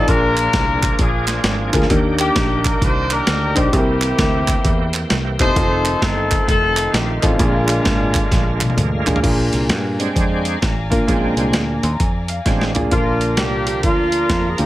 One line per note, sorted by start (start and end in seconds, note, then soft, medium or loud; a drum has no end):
0.07 0.47 A#1 loud
0.07 0.79 A#2 medium
0.07 1.87 F3 medium
0.07 1.87 A#3 medium
0.07 0.82 D4 medium
0.07 0.95 D4 medium
0.07 1.87 D4 medium
0.07 0.82 F4 medium
0.07 0.96 F4 medium
0.07 0.82 G#4 medium
0.07 1.87 G#4 medium
0.07 0.83 A#4 medium
0.07 1.00 A#4 loud
0.07 kick loud
0.07 closed hi-hat medium
0.37 clap medium
0.37 closed hi-hat medium
0.53 0.92 C2 medium
0.53 kick loud
0.53 snare loud
0.53 closed hi-hat medium
0.83 kick medium
0.83 clap medium
0.83 closed hi-hat medium
0.99 1.38 A#1 medium
0.99 1.87 D4 medium
0.99 1.87 F4 medium
0.99 1.75 G#4 medium
0.99 kick loud
0.99 closed hi-hat medium
1.27 snare soft
1.27 clap medium
1.27 closed hi-hat medium
1.43 1.69 G#1 medium
1.43 snare loud
1.43 closed hi-hat medium
1.72 1.88 D2 medium
1.72 1.85 D4 medium
1.72 1.86 F4 medium
1.72 1.86 G#4 medium
1.72 1.86 A#4 medium
1.72 kick medium
1.72 clap medium
1.72 closed hi-hat medium
1.82 snare soft
1.89 2.29 D#2 loud
1.89 2.61 D#3 medium
1.89 3.70 D#3 medium
1.89 2.65 A#3 medium
1.89 3.69 A#3 medium
1.89 2.64 D4 medium
1.89 3.69 D4 medium
1.89 2.65 G4 medium
1.89 3.70 G4 medium
1.89 2.65 A#4 loud
1.89 kick loud
1.89 closed hi-hat medium
2.19 3.07 A#3 medium
2.19 3.07 D4 medium
2.19 2.62 G4 medium
2.19 clap loud
2.19 closed hi-hat medium
2.36 2.75 A#1 loud
2.36 kick loud
2.36 snare loud
2.36 closed hi-hat medium
2.65 2.81 A#4 loud
2.65 kick medium
2.65 clap medium
2.65 closed hi-hat medium
2.81 3.20 C2 medium
2.81 3.11 G4 medium
2.81 3.11 C5 loud
2.81 kick loud
2.81 closed hi-hat medium
3.10 3.69 D4 medium
3.10 3.56 G4 medium
3.10 3.57 A#4 loud
3.10 clap medium
3.10 closed hi-hat medium
3.27 3.52 D2 medium
3.27 snare loud
3.27 closed hi-hat medium
3.55 3.71 B1 medium
3.55 3.68 D4 medium
3.55 3.68 D#4 medium
3.55 3.68 G4 medium
3.55 3.71 G4 medium
3.55 3.69 C5 medium
3.55 kick medium
3.55 clap medium
3.55 closed hi-hat medium
3.71 4.12 C2 loud
3.71 4.44 C3 medium
3.71 5.53 E3 medium
3.71 5.06 A#3 medium
3.71 5.53 A#3 medium
3.71 4.47 C4 medium
3.71 5.53 C4 medium
3.71 4.47 E4 medium
3.71 5.06 E4 medium
3.71 4.47 G4 medium
3.71 5.06 G4 loud
3.71 5.53 G4 medium
3.71 3.80 G#4 medium
3.71 kick loud
3.71 closed hi-hat medium
3.78 4.51 A#4 medium
4.02 clap medium
4.02 closed hi-hat medium
4.18 4.57 D2 medium
4.18 kick loud
4.18 snare loud
4.18 closed hi-hat medium
4.48 kick medium
4.48 clap medium
4.48 closed hi-hat medium
4.65 5.03 E2 medium
4.65 kick loud
4.65 closed hi-hat medium
4.93 clap medium
4.93 closed hi-hat medium
5.10 5.36 C2 loud
5.10 snare medium
5.10 closed hi-hat medium
5.39 5.53 E1 medium
5.39 5.52 C4 medium
5.39 6.01 D#4 medium
5.39 5.52 E4 medium
5.39 5.52 G4 medium
5.39 6.02 A4 medium
5.39 5.98 C5 loud
5.39 5.52 C5 medium
5.39 kick medium
5.39 clap medium
5.39 closed hi-hat medium
5.55 5.95 F1 loud
5.55 7.37 D#3 medium
5.55 7.36 A3 medium
5.55 6.31 C4 medium
5.55 7.36 C4 medium
5.55 6.31 D#4 medium
5.55 6.31 F4 medium
5.55 7.36 F4 medium
5.55 6.31 A4 medium
5.55 kick loud
5.55 closed hi-hat loud
5.85 clap medium
5.85 closed hi-hat medium
6.02 6.41 G1 medium
6.02 6.47 C4 medium
6.02 6.47 D#4 medium
6.02 6.48 A4 loud
6.02 kick loud
6.02 snare loud
6.02 closed hi-hat medium
6.31 kick medium
6.31 clap medium
6.31 closed hi-hat medium
6.48 6.87 F1 medium
6.48 7.36 C4 medium
6.48 7.36 D#4 medium
6.48 6.91 A4 loud
6.48 kick loud
6.48 closed hi-hat loud
6.77 clap loud
6.77 closed hi-hat medium
6.93 7.19 A#1 medium
6.93 7.23 G4 medium
6.93 snare medium
6.93 closed hi-hat medium
7.22 7.37 A1 medium
7.22 9.03 G#3 medium
7.22 7.35 C4 medium
7.22 9.03 D4 medium
7.22 7.35 D#4 medium
7.22 7.35 F4 medium
7.22 9.07 F4 medium
7.22 7.35 A4 medium
7.22 kick medium
7.22 clap medium
7.22 closed hi-hat medium
7.38 7.79 A#1 loud
7.38 8.11 A#2 medium
7.38 9.20 D3 medium
7.38 9.20 G#3 medium
7.38 8.14 A#3 medium
7.38 9.20 A#3 medium
7.38 7.46 C4 medium
7.38 8.15 F4 medium
7.38 9.20 F4 medium
7.38 8.15 G#4 medium
7.38 kick loud
7.38 closed hi-hat medium
7.44 8.17 D4 medium
7.68 clap medium
7.68 closed hi-hat medium
7.85 8.24 G#1 loud
7.85 kick medium
7.85 snare loud
7.85 closed hi-hat medium
8.14 kick medium
8.14 clap medium
8.14 closed hi-hat medium
8.31 8.71 A#1 loud
8.31 kick loud
8.31 snare medium
8.31 closed hi-hat medium
8.61 clap loud
8.61 closed hi-hat medium
8.61 high tom medium
8.70 high tom medium
8.77 9.02 D2 medium
8.77 closed hi-hat medium
8.77 mid tom medium
9.06 9.21 A1 medium
9.06 9.19 A#3 medium
9.06 9.19 D4 medium
9.06 9.19 F4 medium
9.06 9.19 G#4 medium
9.06 clap medium
9.06 closed hi-hat medium
9.06 floor tom medium
9.16 floor tom medium
9.22 9.49 A#1 loud
9.22 9.95 A#2 medium
9.22 9.98 A#3 medium
9.22 9.98 D4 medium
9.22 9.99 F4 medium
9.22 9.99 G#4 medium
9.22 12.88 D5 medium
9.22 12.88 F5 medium
9.22 12.88 G#5 medium
9.22 12.88 A#5 medium
9.22 kick loud
9.22 closed hi-hat medium
9.22 crash medium
9.53 9.71 C2 medium
9.53 closed hi-hat medium
9.69 10.08 G2 medium
9.69 snare loud
9.69 closed hi-hat medium
9.99 10.58 G#3 soft
9.99 10.59 C4 soft
9.99 10.59 D4 medium
9.99 closed hi-hat medium
10.16 10.55 F2 medium
10.16 kick loud
10.16 closed hi-hat medium
10.45 closed hi-hat medium
10.62 11.01 A1 medium
10.62 kick medium
10.62 snare medium
10.62 closed hi-hat medium
10.90 11.03 A#3 medium
10.90 11.03 D4 medium
10.90 11.04 F4 medium
10.90 11.04 A#4 medium
10.90 kick medium
10.90 closed hi-hat medium
11.07 11.33 A#1 loud
11.07 11.79 A#2 medium
11.07 11.35 G#3 soft
11.07 11.83 A#3 medium
11.07 11.35 C4 soft
11.07 11.15 C#4 medium
11.07 11.35 D4 soft
11.07 11.83 F4 medium
11.07 11.83 G#4 medium
11.07 kick loud
11.07 closed hi-hat medium
11.13 11.86 D4 medium
11.36 11.51 C2 medium
11.36 11.64 G#3 medium
11.36 11.64 C4 soft
11.36 11.65 D4 medium
11.36 closed hi-hat medium
11.53 11.78 D2 medium
11.53 snare loud
11.53 closed hi-hat medium
11.83 11.97 D#2 loud
11.83 11.91 C6 medium
11.83 closed hi-hat medium
11.92 12.00 A#5 medium
11.99 12.39 F2 medium
11.99 12.27 G#5 medium
11.99 kick loud
11.99 closed hi-hat medium
12.28 12.44 F5 medium
12.28 closed hi-hat medium
12.45 12.85 A1 medium
12.45 12.73 G#3 soft
12.45 12.73 C4 soft
12.45 12.73 D4 soft
12.45 12.73 F5 medium
12.45 kick medium
12.45 snare soft
12.45 closed hi-hat medium
12.61 snare medium
12.74 12.87 A#3 medium
12.74 12.87 D4 medium
12.74 12.87 F4 medium
12.74 12.88 G#4 medium
12.74 12.90 D5 medium
12.74 closed hi-hat medium
12.74 floor tom medium
12.91 13.38 A#1 loud
12.91 13.63 A#2 medium
12.91 14.66 D3 medium
12.91 14.66 F3 medium
12.91 13.67 A#3 medium
12.91 13.38 A#3 medium
12.91 14.66 A#3 medium
12.91 13.67 D4 medium
12.91 13.38 D4 medium
12.91 13.34 F4 medium
12.91 13.67 F4 medium
12.91 13.34 F4 medium
12.91 14.66 F4 medium
12.91 14.66 A#4 medium
12.91 13.67 A#4 medium
12.91 14.66 D5 medium
12.91 14.66 F5 medium
12.91 14.66 A#5 medium
12.91 kick loud
12.91 closed hi-hat medium
13.21 closed hi-hat medium
13.37 13.84 C2 medium
13.37 13.83 A#3 medium
13.37 13.83 D4 medium
13.37 13.81 G4 medium
13.37 13.66 G4 medium
13.37 snare loud
13.37 closed hi-hat medium
13.67 13.82 G4 medium
13.67 closed hi-hat medium
13.83 14.23 D2 medium
13.83 14.59 A#3 medium
13.83 14.66 D4 medium
13.83 14.51 F4 medium
13.83 14.56 F4 medium
13.83 kick loud
13.83 closed hi-hat medium
14.12 closed hi-hat medium
14.29 14.55 F2 medium
14.29 kick medium
14.29 snare medium
14.29 closed hi-hat medium
14.49 14.59 G#4 medium
14.58 14.66 D2 medium
14.58 14.66 A#3 medium
14.58 14.66 D4 medium
14.58 14.66 D#4 medium
14.58 14.66 F4 medium
14.58 14.66 G4 medium
14.58 14.66 G#4 medium
14.58 closed hi-hat medium